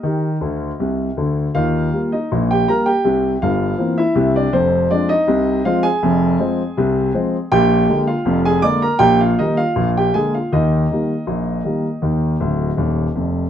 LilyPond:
<<
  \new Staff \with { instrumentName = "Grand piano" } { \time 2/4 \key ees \major \tempo 4 = 80 <bes' ees''>4. r8 | <f' f''>8. <ees' ees''>8 <g' g''>16 <bes' bes''>16 <g' g''>16~ | <g' g''>8 <f' f''>8. <e' e''>8 <d' d''>16 | <c' c''>8 <d' d''>16 <ees' ees''>8. <f' f''>16 <aes' aes''>16~ |
<aes' aes''>2 | <g' g''>8. <f' f''>8 <aes' aes''>16 <d'' d'''>16 <bes' bes''>16 | <g' g''>16 <f' f''>16 <ees' ees''>16 <f' f''>8 <g' g''>16 <aes' aes''>16 <f' f''>16 | <ees' ees''>2~ |
<ees' ees''>4. r8 | }
  \new Staff \with { instrumentName = "Grand piano" } { \clef bass \time 2/4 \key ees \major <ees g'>8 <d, d>8 <c, c>8 <d, d>8 | <ees, ees>8 <g bes>8 <bes,, bes,>8 <g bes>8 | <c, c>8 <g,, g,>8 <e bes c'>8 <c, c>8 | <f,, f,>8 <f aes c'>8 <c, c>8 <f aes c'>8 |
<f,, f,>8 <f aes c'>8 <c, c>8 <f aes c'>8 | <bes,, bes,>8 <d aes bes>8 <f,, f,>8 <d aes bes>8 | <bes,, bes,>8 <ees g bes>8 <bes,, bes,>8 <d aes bes>8 | <ees, ees>8 <ees g bes>8 <bes,, bes,>8 <ees g bes>8 |
<ees, ees>8 <d,, d,>8 <ees,, ees,>8 <f,, f,>8 | }
>>